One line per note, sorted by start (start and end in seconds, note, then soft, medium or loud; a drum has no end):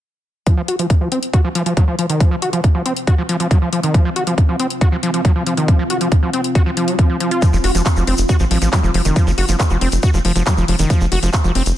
0.47 0.57 F3 medium
0.47 11.78 C4 medium
0.47 kick loud
0.47 closed hi-hat medium
0.57 0.62 F3 loud
0.68 0.76 F#4 medium
0.68 closed hi-hat medium
0.79 0.87 F3 medium
0.79 closed hi-hat medium
0.90 kick loud
0.90 closed hi-hat medium
1.01 1.08 F3 medium
1.07 11.78 F4 medium
1.12 1.19 C4 medium
1.12 closed hi-hat medium
1.23 closed hi-hat medium
1.33 1.41 F#4 medium
1.33 kick loud
1.33 closed hi-hat medium
1.44 1.49 F3 loud
1.55 1.63 F3 loud
1.55 closed hi-hat medium
1.66 1.74 F3 medium
1.66 11.78 F5 medium
1.66 closed hi-hat medium
1.77 1.84 F#3 loud
1.77 kick loud
1.77 closed hi-hat medium
1.88 1.95 F3 medium
1.99 2.06 F3 medium
1.99 closed hi-hat medium
2.10 2.20 D#3 medium
2.10 closed hi-hat medium
2.20 2.31 F3 medium
2.20 kick loud
2.20 closed hi-hat medium
2.31 2.36 F3 loud
2.42 2.50 F#4 medium
2.42 closed hi-hat medium
2.53 2.61 F3 medium
2.53 closed hi-hat medium
2.64 kick loud
2.64 closed hi-hat medium
2.75 2.82 F3 medium
2.86 2.93 C4 medium
2.86 closed hi-hat medium
2.97 closed hi-hat medium
3.07 3.15 F#4 loud
3.07 kick loud
3.07 closed hi-hat medium
3.18 3.23 F3 loud
3.29 3.37 F3 loud
3.29 closed hi-hat loud
3.40 3.48 F3 medium
3.40 closed hi-hat medium
3.51 3.58 F#3 loud
3.51 kick loud
3.51 closed hi-hat medium
3.62 3.69 F3 medium
3.73 3.80 F3 medium
3.73 closed hi-hat medium
3.83 3.94 D#3 medium
3.83 closed hi-hat medium
3.94 4.05 F3 medium
3.94 kick loud
3.94 closed hi-hat medium
4.05 4.10 F3 loud
4.16 4.24 F#4 medium
4.16 closed hi-hat medium
4.27 4.35 F3 medium
4.27 closed hi-hat medium
4.38 kick loud
4.38 closed hi-hat medium
4.49 4.56 F3 medium
4.60 4.67 C4 medium
4.60 closed hi-hat medium
4.70 closed hi-hat medium
4.81 4.89 F#4 loud
4.81 kick loud
4.81 closed hi-hat medium
4.92 4.97 F3 loud
5.03 5.11 F3 loud
5.03 closed hi-hat medium
5.14 5.21 F3 medium
5.14 closed hi-hat medium
5.25 5.32 F#3 loud
5.25 kick loud
5.25 closed hi-hat medium
5.36 5.43 F3 medium
5.47 5.54 F3 medium
5.47 closed hi-hat medium
5.57 5.68 D#3 medium
5.57 closed hi-hat medium
5.68 5.79 F3 medium
5.68 kick loud
5.68 closed hi-hat medium
5.79 5.84 F3 loud
5.90 5.98 F#4 medium
5.90 closed hi-hat medium
6.01 6.08 F3 medium
6.01 closed hi-hat medium
6.12 kick loud
6.12 closed hi-hat medium
6.23 6.30 F3 medium
6.33 6.41 C4 medium
6.33 closed hi-hat medium
6.44 closed hi-hat medium
6.55 6.63 F#4 loud
6.55 kick loud
6.55 closed hi-hat medium
6.66 6.71 F3 loud
6.77 6.89 F3 medium
6.77 closed hi-hat medium
6.88 6.95 F#3 loud
6.88 closed hi-hat medium
6.99 7.09 F3 medium
6.99 kick loud
6.99 closed hi-hat medium
7.10 7.17 F3 medium
7.20 7.31 F3 medium
7.20 closed hi-hat medium
7.31 7.42 F4 medium
7.31 closed hi-hat medium
7.42 7.53 F3 medium
7.42 kick loud
7.42 closed hi-hat medium
7.42 shaker medium
7.53 7.60 F1 medium
7.53 7.58 F3 loud
7.53 shaker soft
7.64 7.70 F1 loud
7.64 7.71 F#4 medium
7.64 open hi-hat loud
7.75 7.81 F1 medium
7.75 7.82 F3 medium
7.75 closed hi-hat medium
7.75 shaker medium
7.86 kick loud
7.86 clap loud
7.86 closed hi-hat medium
7.86 shaker medium
7.96 8.03 F1 medium
7.96 8.04 F3 medium
7.96 shaker soft
8.07 8.14 F1 loud
8.07 8.15 C4 medium
8.07 open hi-hat loud
8.18 8.25 F1 medium
8.18 closed hi-hat medium
8.18 shaker medium
8.29 8.37 F#4 loud
8.29 kick loud
8.29 closed hi-hat medium
8.29 shaker medium
8.39 8.47 A1 medium
8.39 8.45 F3 loud
8.39 shaker soft
8.51 8.57 A1 loud
8.51 8.58 F3 loud
8.51 open hi-hat loud
8.62 8.68 A1 medium
8.62 8.69 F3 medium
8.62 closed hi-hat medium
8.62 shaker medium
8.73 8.80 F#3 loud
8.73 kick loud
8.73 clap loud
8.73 closed hi-hat medium
8.73 shaker medium
8.83 8.90 F1 medium
8.83 8.91 F3 medium
8.83 shaker soft
8.94 9.01 F1 loud
8.94 9.02 F3 medium
8.94 open hi-hat loud
9.05 9.12 F1 medium
9.05 9.16 D#3 medium
9.05 closed hi-hat medium
9.05 shaker medium
9.16 9.26 F3 medium
9.16 kick loud
9.16 closed hi-hat medium
9.16 shaker medium
9.27 9.33 F#1 medium
9.27 9.31 F3 loud
9.27 shaker soft
9.38 9.44 F#1 loud
9.38 9.45 F#4 medium
9.38 open hi-hat loud
9.49 9.55 F#1 medium
9.49 9.56 F3 medium
9.49 closed hi-hat medium
9.49 shaker medium
9.60 kick loud
9.60 clap loud
9.60 closed hi-hat medium
9.60 shaker medium
9.70 9.77 F1 medium
9.70 9.78 F3 medium
9.70 shaker soft
9.81 9.88 F1 loud
9.81 9.89 C4 medium
9.81 open hi-hat loud
9.92 9.99 F1 medium
9.92 closed hi-hat medium
9.92 shaker medium
10.03 10.11 F#4 loud
10.03 kick loud
10.03 closed hi-hat medium
10.03 shaker medium
10.14 10.20 F1 medium
10.14 10.18 F3 loud
10.14 shaker soft
10.25 10.31 F1 loud
10.25 10.32 F3 loud
10.25 open hi-hat loud
10.36 10.42 F1 medium
10.36 10.43 F3 medium
10.36 closed hi-hat medium
10.36 shaker medium
10.46 10.54 F#3 loud
10.46 kick loud
10.46 clap loud
10.46 closed hi-hat medium
10.46 shaker medium
10.57 10.64 F1 medium
10.57 10.65 F3 medium
10.57 shaker soft
10.68 10.75 F1 loud
10.68 10.76 F3 medium
10.68 open hi-hat loud
10.79 10.86 F1 medium
10.79 10.89 D#3 medium
10.79 closed hi-hat medium
10.79 shaker medium
10.90 11.00 F3 medium
10.90 kick loud
10.90 closed hi-hat medium
10.90 shaker medium
11.01 11.07 F1 medium
11.01 11.05 F3 loud
11.01 shaker soft
11.12 11.18 F1 loud
11.12 11.19 F#4 medium
11.12 open hi-hat loud
11.23 11.29 F1 medium
11.23 11.30 F3 medium
11.23 closed hi-hat medium
11.23 shaker medium
11.33 kick loud
11.33 clap loud
11.33 closed hi-hat medium
11.33 shaker medium
11.44 11.51 F1 medium
11.44 11.52 F3 medium
11.44 shaker soft
11.55 11.62 F1 loud
11.55 11.63 C4 medium
11.55 open hi-hat loud
11.66 11.73 F1 medium
11.66 closed hi-hat medium
11.66 shaker medium